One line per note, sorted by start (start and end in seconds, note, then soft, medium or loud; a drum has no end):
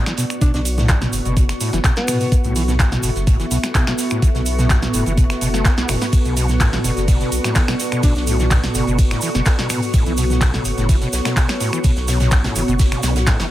0.00 13.51 B3 medium
0.00 13.51 F#4 medium
0.00 13.51 A4 medium
0.00 2.31 D5 medium
0.00 13.51 C#6 medium
0.06 0.13 E3 medium
0.06 finger snap medium
0.06 snare medium
0.06 closed hi-hat soft
0.06 cabasa soft
0.17 0.24 B2 loud
0.17 snare soft
0.17 closed hi-hat medium
0.17 open hi-hat loud
0.17 cabasa medium
0.30 finger snap medium
0.30 closed hi-hat soft
0.30 cabasa soft
0.41 0.52 B2 medium
0.41 0.49 D4 medium
0.41 kick loud
0.41 closed hi-hat loud
0.41 closed hi-hat medium
0.41 cabasa medium
0.54 1.06 B1 loud
0.54 0.60 B2 medium
0.54 0.61 D4 medium
0.54 snare medium
0.54 closed hi-hat soft
0.54 cabasa soft
0.65 closed hi-hat medium
0.65 open hi-hat loud
0.65 cabasa loud
0.78 0.87 A2 medium
0.78 snare medium
0.78 closed hi-hat soft
0.78 mid tom loud
0.78 cabasa soft
0.89 0.96 E3 medium
0.89 kick loud
0.89 snare loud
0.89 clap loud
0.89 closed hi-hat medium
0.89 closed hi-hat loud
0.89 cabasa medium
1.01 1.08 B2 loud
1.01 snare medium
1.01 snare soft
1.01 closed hi-hat soft
1.01 mid tom loud
1.01 cabasa soft
1.13 1.20 F#1 medium
1.13 closed hi-hat medium
1.13 open hi-hat loud
1.13 cabasa medium
1.25 1.53 F#1 medium
1.25 1.35 B2 medium
1.25 closed hi-hat soft
1.25 cabasa soft
1.37 1.44 B2 medium
1.37 kick loud
1.37 closed hi-hat medium
1.37 closed hi-hat loud
1.37 cabasa medium
1.49 finger snap medium
1.49 snare medium
1.49 closed hi-hat soft
1.49 cabasa soft
1.60 1.71 A2 medium
1.60 closed hi-hat medium
1.60 open hi-hat loud
1.60 cabasa medium
1.73 1.80 F#1 loud
1.73 1.79 E3 medium
1.73 snare medium
1.73 closed hi-hat soft
1.73 cabasa soft
1.84 1.91 B2 loud
1.84 kick loud
1.84 snare loud
1.84 clap loud
1.84 closed hi-hat medium
1.84 cabasa medium
1.96 2.44 B3 loud
1.96 snare medium
1.96 closed hi-hat soft
1.96 cabasa soft
2.08 2.18 B2 medium
2.08 finger snap medium
2.08 mid tom loud
2.08 open hi-hat medium
2.08 open hi-hat loud
2.08 cabasa loud
2.20 2.27 B2 medium
2.20 open hi-hat medium
2.20 cabasa soft
2.32 6.12 E5 medium
2.32 kick loud
2.32 closed hi-hat medium
2.32 cabasa medium
2.44 2.96 B1 loud
2.44 2.54 A2 medium
2.44 closed hi-hat soft
2.44 cabasa soft
2.56 2.63 E3 medium
2.56 closed hi-hat medium
2.56 open hi-hat loud
2.56 cabasa medium
2.68 2.74 B2 loud
2.68 snare medium
2.68 closed hi-hat soft
2.68 mid tom loud
2.68 cabasa soft
2.79 kick loud
2.79 snare loud
2.79 clap loud
2.79 closed hi-hat medium
2.79 cabasa medium
2.92 3.01 B2 medium
2.92 snare medium
2.92 closed hi-hat soft
2.92 mid tom loud
2.92 cabasa soft
3.03 3.11 F#1 medium
3.03 3.10 B2 medium
3.03 closed hi-hat medium
3.03 open hi-hat loud
3.03 cabasa loud
3.15 3.44 F#1 medium
3.15 snare soft
3.15 closed hi-hat soft
3.15 cabasa soft
3.27 3.37 A2 medium
3.27 kick loud
3.27 closed hi-hat medium
3.27 cabasa medium
3.39 3.46 E3 medium
3.39 snare soft
3.39 closed hi-hat soft
3.39 cabasa soft
3.51 3.59 B1 medium
3.51 3.58 B2 loud
3.51 closed hi-hat medium
3.51 open hi-hat loud
3.51 cabasa medium
3.63 finger snap medium
3.63 snare medium
3.63 closed hi-hat soft
3.63 cabasa soft
3.75 3.85 B2 medium
3.75 kick loud
3.75 snare loud
3.75 clap loud
3.75 closed hi-hat loud
3.75 closed hi-hat medium
3.75 cabasa medium
3.87 3.93 B2 medium
3.87 finger snap medium
3.87 snare medium
3.87 closed hi-hat soft
3.87 cabasa soft
3.98 snare soft
3.98 closed hi-hat medium
3.98 open hi-hat loud
3.98 cabasa loud
4.10 4.20 A2 medium
4.10 finger snap medium
4.10 cabasa soft
4.22 4.29 E3 medium
4.22 kick loud
4.22 closed hi-hat medium
4.22 cabasa medium
4.34 4.87 B1 loud
4.34 4.41 B2 loud
4.34 snare medium
4.34 closed hi-hat soft
4.34 cabasa soft
4.45 closed hi-hat medium
4.45 open hi-hat loud
4.45 cabasa medium
4.58 4.68 B2 medium
4.58 snare medium
4.58 closed hi-hat soft
4.58 mid tom loud
4.58 cabasa soft
4.70 4.77 B2 medium
4.70 kick loud
4.70 snare loud
4.70 clap loud
4.70 closed hi-hat medium
4.70 cabasa medium
4.82 snare soft
4.82 snare medium
4.82 closed hi-hat soft
4.82 mid tom loud
4.82 cabasa soft
4.93 5.01 F#1 loud
4.93 5.04 A2 medium
4.93 closed hi-hat medium
4.93 open hi-hat loud
4.93 cabasa loud
5.06 5.34 F#1 medium
5.06 5.13 E3 medium
5.06 closed hi-hat soft
5.06 cabasa soft
5.17 5.25 B2 loud
5.17 kick loud
5.17 closed hi-hat medium
5.17 cabasa medium
5.30 finger snap medium
5.30 snare soft
5.30 closed hi-hat soft
5.30 cabasa soft
5.41 5.70 F#1 medium
5.41 5.48 B2 loud
5.41 closed hi-hat medium
5.41 open hi-hat loud
5.41 cabasa loud
5.54 5.67 A3 medium
5.54 snare medium
5.54 closed hi-hat soft
5.54 cabasa soft
5.65 5.72 B3 medium
5.65 kick loud
5.65 snare loud
5.65 clap loud
5.65 closed hi-hat medium
5.65 cabasa medium
5.78 5.85 B1 medium
5.78 5.91 B3 medium
5.78 snare medium
5.78 closed hi-hat soft
5.78 cabasa soft
5.89 5.97 F#1 loud
5.89 5.96 B1 medium
5.89 finger snap medium
5.89 mid tom loud
5.89 open hi-hat medium
5.89 open hi-hat loud
5.89 cabasa medium
6.01 6.05 B3 medium
6.01 snare medium
6.01 open hi-hat medium
6.01 cabasa soft
6.13 9.93 D5 medium
6.13 kick loud
6.13 closed hi-hat medium
6.13 ride medium
6.13 cabasa soft
6.25 6.77 B1 loud
6.25 6.35 B2 medium
6.25 closed hi-hat soft
6.25 cabasa soft
6.37 6.47 B2 medium
6.37 closed hi-hat medium
6.37 open hi-hat loud
6.37 cabasa medium
6.48 snare medium
6.48 closed hi-hat soft
6.48 mid tom medium
6.48 cabasa soft
6.60 6.71 A2 medium
6.60 kick loud
6.60 snare loud
6.60 clap loud
6.60 closed hi-hat medium
6.60 ride medium
6.60 cabasa medium
6.73 6.79 E3 medium
6.73 snare medium
6.73 closed hi-hat soft
6.73 mid tom loud
6.73 cabasa soft
6.84 6.92 F#1 loud
6.84 6.91 B2 loud
6.84 closed hi-hat medium
6.84 open hi-hat loud
6.84 cabasa loud
6.97 7.25 F#1 medium
6.97 snare soft
6.97 closed hi-hat soft
6.97 cabasa soft
7.08 7.18 B2 medium
7.08 kick loud
7.08 closed hi-hat medium
7.08 ride medium
7.08 cabasa medium
7.21 7.30 B2 medium
7.21 snare soft
7.21 closed hi-hat soft
7.21 cabasa soft
7.32 7.40 B1 medium
7.32 closed hi-hat medium
7.32 open hi-hat loud
7.32 cabasa medium
7.44 7.54 A2 medium
7.44 finger snap medium
7.44 snare medium
7.44 closed hi-hat soft
7.44 cabasa soft
7.55 7.63 E3 medium
7.55 kick loud
7.55 snare loud
7.55 clap loud
7.55 closed hi-hat medium
7.55 ride medium
7.55 cabasa soft
7.68 7.74 B2 loud
7.68 finger snap medium
7.68 snare medium
7.68 closed hi-hat soft
7.68 cabasa soft
7.79 snare soft
7.79 closed hi-hat medium
7.79 open hi-hat loud
7.79 cabasa medium
7.92 8.01 B2 medium
7.92 finger snap medium
7.92 closed hi-hat soft
7.92 cabasa soft
8.03 8.14 B2 medium
8.03 8.11 D4 medium
8.03 kick loud
8.03 closed hi-hat medium
8.03 ride medium
8.03 cabasa soft
8.15 8.68 B1 loud
8.15 8.23 D4 medium
8.15 snare medium
8.15 closed hi-hat soft
8.15 cabasa soft
8.27 8.37 A2 medium
8.27 closed hi-hat medium
8.27 open hi-hat loud
8.27 cabasa medium
8.39 8.46 E3 medium
8.39 snare medium
8.39 closed hi-hat soft
8.39 mid tom medium
8.39 cabasa soft
8.50 8.58 B2 loud
8.50 kick loud
8.50 snare loud
8.50 clap loud
8.50 closed hi-hat medium
8.50 ride medium
8.50 cabasa soft
8.63 snare medium
8.63 snare soft
8.63 closed hi-hat soft
8.63 mid tom medium
8.63 cabasa soft
8.74 8.82 F#1 loud
8.74 8.85 B2 medium
8.74 closed hi-hat medium
8.74 open hi-hat loud
8.74 cabasa medium
8.87 9.15 F#1 medium
8.87 8.97 B2 medium
8.87 closed hi-hat soft
8.87 cabasa soft
8.98 kick loud
8.98 closed hi-hat loud
8.98 closed hi-hat medium
8.98 ride medium
8.98 cabasa medium
9.11 9.20 A2 medium
9.11 finger snap medium
9.11 snare soft
9.11 closed hi-hat soft
9.11 cabasa soft
9.21 9.29 E3 medium
9.21 closed hi-hat medium
9.21 open hi-hat loud
9.21 cabasa medium
9.35 9.42 F#1 loud
9.35 9.41 B2 loud
9.35 snare medium
9.35 closed hi-hat soft
9.35 cabasa soft
9.46 kick loud
9.46 snare loud
9.46 clap loud
9.46 closed hi-hat medium
9.46 closed hi-hat loud
9.46 ride medium
9.46 cabasa soft
9.59 9.68 B2 medium
9.59 snare medium
9.59 closed hi-hat soft
9.59 cabasa soft
9.69 9.80 B2 medium
9.69 finger snap medium
9.69 mid tom medium
9.69 open hi-hat medium
9.69 open hi-hat loud
9.69 cabasa medium
9.82 open hi-hat medium
9.82 cabasa soft
9.93 10.04 A2 medium
9.93 13.51 C#5 medium
9.93 kick loud
9.93 closed hi-hat loud
9.93 closed hi-hat medium
9.93 ride medium
9.93 cabasa medium
10.06 10.58 B1 medium
10.06 10.13 E3 medium
10.06 closed hi-hat soft
10.06 cabasa soft
10.17 10.25 B2 loud
10.17 closed hi-hat medium
10.17 open hi-hat loud
10.17 cabasa medium
10.30 snare medium
10.30 closed hi-hat soft
10.30 mid tom medium
10.30 cabasa soft
10.41 10.52 B2 medium
10.41 kick loud
10.41 snare loud
10.41 clap loud
10.41 closed hi-hat loud
10.41 closed hi-hat medium
10.41 ride medium
10.41 cabasa soft
10.54 10.63 B2 medium
10.54 snare medium
10.54 closed hi-hat soft
10.54 mid tom medium
10.54 cabasa soft
10.65 10.73 F#1 loud
10.65 closed hi-hat medium
10.65 open hi-hat loud
10.65 cabasa medium
10.78 11.06 F#1 medium
10.78 10.87 A2 medium
10.78 snare soft
10.78 closed hi-hat soft
10.78 cabasa soft
10.89 10.96 E3 medium
10.89 kick loud
10.89 closed hi-hat medium
10.89 ride medium
10.89 cabasa medium
11.01 11.08 B2 loud
11.01 snare soft
11.01 closed hi-hat soft
11.01 cabasa soft
11.13 11.20 B1 medium
11.13 snare loud
11.13 closed hi-hat medium
11.13 open hi-hat loud
11.13 cabasa loud
11.25 11.35 B2 medium
11.25 finger snap medium
11.25 snare loud
11.25 snare medium
11.25 closed hi-hat soft
11.25 closed hi-hat medium
11.25 cabasa soft
11.36 11.47 B2 medium
11.36 kick loud
11.36 snare loud
11.36 clap loud
11.36 closed hi-hat medium
11.36 ride medium
11.36 cabasa medium
11.48 finger snap medium
11.48 snare loud
11.48 snare medium
11.48 closed hi-hat soft
11.48 closed hi-hat medium
11.48 cabasa soft
11.60 11.71 A2 medium
11.60 snare soft
11.60 closed hi-hat medium
11.60 open hi-hat loud
11.60 cabasa medium
11.73 11.79 E3 medium
11.73 finger snap medium
11.73 cabasa soft
11.84 11.91 B2 loud
11.84 kick loud
11.84 closed hi-hat medium
11.84 closed hi-hat loud
11.84 ride medium
11.84 cabasa medium
11.96 12.49 B1 loud
11.96 snare soft
11.96 closed hi-hat soft
11.96 cabasa soft
12.08 12.18 B2 medium
12.08 snare loud
12.08 closed hi-hat medium
12.08 open hi-hat loud
12.08 cabasa medium
12.20 12.30 B2 medium
12.20 snare loud
12.20 closed hi-hat medium
12.20 closed hi-hat soft
12.20 mid tom medium
12.20 cabasa soft
12.31 kick loud
12.31 snare loud
12.31 clap loud
12.31 closed hi-hat medium
12.31 closed hi-hat loud
12.31 ride medium
12.31 cabasa medium
12.44 12.54 A2 medium
12.44 snare medium
12.44 snare loud
12.44 closed hi-hat medium
12.44 closed hi-hat soft
12.44 mid tom medium
12.44 cabasa soft
12.56 12.63 F#1 medium
12.56 12.63 E3 medium
12.56 closed hi-hat medium
12.56 open hi-hat loud
12.56 cabasa medium
12.68 12.96 F#1 medium
12.68 12.74 B2 loud
12.68 closed hi-hat soft
12.68 cabasa soft
12.79 kick loud
12.79 snare loud
12.79 closed hi-hat medium
12.79 closed hi-hat loud
12.79 ride medium
12.79 cabasa soft
12.92 13.01 B2 medium
12.92 finger snap medium
12.92 snare soft
12.92 closed hi-hat soft
12.92 cabasa soft
13.03 13.32 B1 medium
13.03 13.14 B2 medium
13.03 snare medium
13.03 snare loud
13.03 closed hi-hat medium
13.03 open hi-hat loud
13.03 cabasa loud
13.16 snare loud
13.16 closed hi-hat soft
13.16 closed hi-hat medium
13.16 mid tom medium
13.16 cabasa soft
13.27 13.37 A2 medium
13.27 kick loud
13.27 snare loud
13.27 snare medium
13.27 clap loud
13.27 closed hi-hat loud
13.27 closed hi-hat medium
13.27 ride medium
13.27 cabasa soft
13.39 13.47 F#1 medium
13.39 13.46 E3 medium
13.39 snare medium
13.39 snare loud
13.39 closed hi-hat medium
13.39 closed hi-hat soft
13.39 cabasa soft